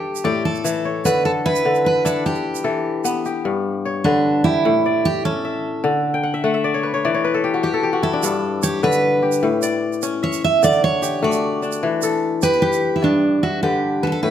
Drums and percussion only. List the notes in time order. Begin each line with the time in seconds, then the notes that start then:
0.16 shaker
0.55 shaker
0.65 shaker
1.05 shaker
1.55 shaker
1.75 shaker
2.06 shaker
2.26 shaker
2.35 shaker
2.55 shaker
3.05 shaker
3.25 shaker
8.23 shaker
8.63 shaker
8.83 shaker
8.92 shaker
9.32 shaker
9.62 shaker
9.93 shaker
10.02 shaker
10.33 shaker
10.63 shaker
10.72 shaker
11.03 shaker
11.32 shaker
11.63 shaker
11.72 shaker
12.02 shaker
12.42 shaker
12.53 shaker
12.73 shaker